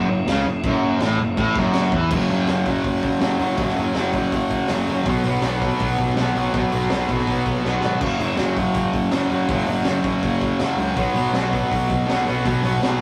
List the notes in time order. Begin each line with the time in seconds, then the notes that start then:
0.06 F#1 F#2
0.25 C#2 C#3, snare, crash
0.44 F#1 F#2
0.64 F#1 F#2, kick, crash
1.00 A1 A2, snare, crash
1.09 snare
1.18 F#1 F#2
1.37 A1 A2, kick, crash
1.55 F#1 F#2, kick, snare
1.73 snare, crash
1.92 E2 E3, kick
2.10 F#1 F#2 C#3 F#3, kick, crash
2.29 F#1 C#3 F#3, open hi-hat
2.47 F#1 F#2 C#3 F#3, snare, open hi-hat
2.65 C#3 F#3, kick, open hi-hat
2.84 F#1, kick, open hi-hat
3.03 F#1, kick, open hi-hat
3.20 F#1 F#2 C#3 F#3, snare, open hi-hat
3.39 F#1 C#3 F#3, open hi-hat
3.57 F#1 F#2 C#3, kick, open hi-hat
3.62 F#3
3.67 snare
3.76 F#1 C#3 F#3, open hi-hat
3.94 F#1 F#2 C#3 F#3, snare, open hi-hat
4.13 F#1 F#3, kick, open hi-hat
4.18 C#3
4.32 F#1, kick, open hi-hat
4.50 kick, open hi-hat
4.68 F#1 F#2 C#3, snare, open hi-hat
4.73 F#3
4.87 F#1 F#3, open hi-hat
4.92 C#3
5.05 B1 B2 F#3 B3, kick, open hi-hat
5.24 B1 B3, open hi-hat
5.28 F#3
5.42 B1 B2 F#3, snare, open hi-hat
5.47 B3
5.60 F#3 B3, kick, open hi-hat
5.79 B1, kick, open hi-hat
5.98 B1, kick, open hi-hat
6.16 B1 B2 F#3, snare, open hi-hat
6.20 B3
6.34 B1 B3, open hi-hat
6.38 F#3
6.53 B1 B2 F#3 B3, kick, open hi-hat
6.72 B1 F#3 B3, open hi-hat
6.89 B1 B2 F#3, snare, open hi-hat
6.94 B3
7.08 B1 F#3 B3, kick, open hi-hat
7.18 snare
7.27 B1, kick, open hi-hat
7.46 kick, open hi-hat
7.63 B1 B2 F#3 B3, snare
7.81 G#1 F#3 B3, snare
7.99 F#1 F#2 C#3 F#3, kick, crash
8.18 F#1 C#3 F#3, open hi-hat
8.37 F#1 F#2 C#3 F#3, snare, open hi-hat
8.56 C#3 F#3, kick, open hi-hat
8.74 F#1, kick, open hi-hat
8.93 F#1, kick, open hi-hat
9.11 F#1 F#2 C#3, snare, open hi-hat
9.16 F#3
9.30 F#1 C#3 F#3, open hi-hat
9.49 F#1 F#2 C#3 F#3, kick, open hi-hat
9.57 snare
9.66 F#1 C#3 F#3, open hi-hat
9.85 F#1 F#2 C#3 F#3, snare, open hi-hat
10.04 F#1 C#3 F#3, kick, open hi-hat
10.22 F#1, kick, open hi-hat
10.41 kick, open hi-hat
10.59 F#1 F#2 C#3 F#3, snare, open hi-hat
10.77 C#2 F#3, open hi-hat
10.81 C#3
10.96 B1 B2 F#3 B3, kick, open hi-hat
11.15 B1 F#3 B3, open hi-hat
11.33 B1 B2 F#3, snare, open hi-hat
11.38 B3
11.52 F#3 B3, kick, open hi-hat
11.71 B1, kick, open hi-hat
11.89 B1, kick, open hi-hat
12.07 B1 B2 F#3 B3, snare, open hi-hat
12.26 B1 F#3 B3, open hi-hat
12.45 B1 B2 F#3 B3, kick, open hi-hat
12.62 B1 F#3 B3, open hi-hat
12.81 B1 B2 F#3 B3, snare, open hi-hat